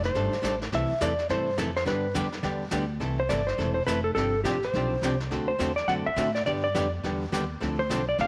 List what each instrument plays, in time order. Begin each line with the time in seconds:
Already playing: upright bass F1
0.03 electric slide guitar C5, snare
0.15 upright bass G1, hollow-body jazz guitar G3 A3 D4 A4, brush sweep, kick, snare
0.33 muted upright bass stroke, snare
0.42 upright bass A1, hollow-body jazz guitar G3 A3 D4 A4, kick, snare, hi-hat pedal
0.61 snare
0.72 upright bass C2, hollow-body jazz guitar C3 E3 A3 E4 A4, electric slide guitar E5, brush sweep, kick, snare
0.91 muted upright bass stroke
1.01 upright bass E2, hollow-body jazz guitar C3 E3 A3 E4 A4, electric slide guitar D5, kick, snare, hi-hat pedal
1.18 snare
1.29 upright bass G2, hollow-body jazz guitar C3 E3 A3 E4 A4, electric slide guitar C5, brush sweep, kick, snare
1.57 upright bass F2, hollow-body jazz guitar C3 E3 A3 E4 A4, kick, snare, hi-hat pedal
1.76 electric slide guitar C5, snare
1.85 upright bass G2, hollow-body jazz guitar D3 G3 B3 D4 G4, electric slide guitar B4, brush sweep, kick, snare
2.14 upright bass F2, hollow-body jazz guitar D3 G3 B3 D4 G4, kick, snare, hi-hat pedal
2.32 snare
2.43 upright bass E2, hollow-body jazz guitar D3 G3 B3 D4 G4, brush sweep, kick, snare
2.71 upright bass D2, hollow-body jazz guitar D3 G3 B3 D4 G4, kick, snare, hi-hat pedal
3.00 upright bass C2, hollow-body jazz guitar C3 E3 A3 E4 A4, brush sweep, kick, snare
3.20 electric slide guitar C5
3.29 upright bass G1, hollow-body jazz guitar C3 E3 A3 E4 A4, electric slide guitar D5, kick, snare, hi-hat pedal
3.47 electric slide guitar C5, snare
3.58 upright bass E1, hollow-body jazz guitar C3 E3 A3 E4 A4, brush sweep, kick, snare
3.74 electric slide guitar C5
3.86 upright bass F1, hollow-body jazz guitar C3 E3 A3 E4 A4, electric slide guitar B4, kick, snare, hi-hat pedal
4.04 electric slide guitar A4
4.15 upright bass G1, hollow-body jazz guitar C3 F3 C4 D4 G4, electric slide guitar A4, brush sweep, kick, snare
4.44 upright bass A1, hollow-body jazz guitar C3 F3 C4 D4 G4, electric slide guitar G4, kick, snare, hi-hat pedal
4.63 electric slide guitar C5, snare
4.73 upright bass B1, hollow-body jazz guitar C3 F3 C4 D4 G4, brush sweep, kick, snare
5.02 upright bass C2, hollow-body jazz guitar C3 F3 C4 D4 G4, kick, snare, hi-hat pedal
5.20 snare
5.31 upright bass D2, hollow-body jazz guitar D3 A3 C4 F#4 A4, brush sweep, kick, snare
5.48 electric slide guitar C5
5.59 upright bass E2, hollow-body jazz guitar D3 A3 C4 F#4 A4, kick, snare, hi-hat pedal
5.76 electric slide guitar D5, snare
5.88 upright bass F#2, hollow-body jazz guitar D3 A3 C4 F#4 A4, electric slide guitar F#5, brush sweep, kick, snare
6.06 electric slide guitar E5, muted upright bass stroke
6.16 upright bass A2, hollow-body jazz guitar D3 A3 C4 F#4 A4, kick, snare, hi-hat pedal
6.35 electric slide guitar D5, snare
6.46 upright bass G2, hollow-body jazz guitar D3 G3 B3 D4 G4, electric slide guitar D5, brush sweep, kick, snare
6.64 electric slide guitar D5
6.75 upright bass F2, hollow-body jazz guitar D3 G3 B3 D4 G4, kick, snare, hi-hat pedal
7.04 upright bass E2, hollow-body jazz guitar D3 G3 B3 D4 G4, brush sweep, kick, snare
7.32 upright bass D#2, hollow-body jazz guitar D3 G3 B3 D4 G4, kick, snare, hi-hat pedal
7.61 upright bass D2, hollow-body jazz guitar D3 F3 C4 D4 A4, brush sweep, kick, snare
7.79 electric slide guitar C5
7.90 upright bass B1, hollow-body jazz guitar D3 F3 C4 D4 A4, kick, snare, hi-hat pedal
8.09 electric slide guitar D5
8.18 upright bass A1, hollow-body jazz guitar D3 F3 C4 D4 A4, electric slide guitar F5, brush sweep, kick, snare